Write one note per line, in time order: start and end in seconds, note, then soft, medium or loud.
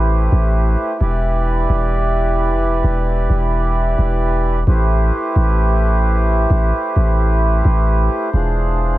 0.00 0.29 A1 loud
0.00 0.97 A3 medium
0.00 4.63 E4 medium
0.00 0.97 G4 medium
0.00 0.97 B4 medium
0.00 0.97 C5 medium
0.32 0.76 A1 loud
1.01 1.67 E1 loud
1.01 4.63 E3 medium
1.01 4.63 G4 medium
1.01 4.63 B4 medium
1.01 4.63 D5 medium
1.69 2.51 E1 loud
2.50 2.68 F1 loud
2.67 2.83 E1 loud
2.84 3.28 E1 loud
3.30 3.96 E1 loud
3.98 4.64 E1 loud
4.67 5.11 A1 loud
4.67 8.30 A3 medium
4.67 8.30 E4 medium
4.67 8.30 G4 medium
4.67 8.30 B4 medium
4.67 8.98 C5 medium
5.36 6.46 A1 loud
6.50 6.72 A1 loud
6.96 7.62 A1 loud
7.65 8.09 A1 loud
8.33 8.98 E1 loud
8.33 8.98 E3 medium
8.33 8.98 D4 medium
8.33 8.98 F4 medium
8.33 8.98 G#4 medium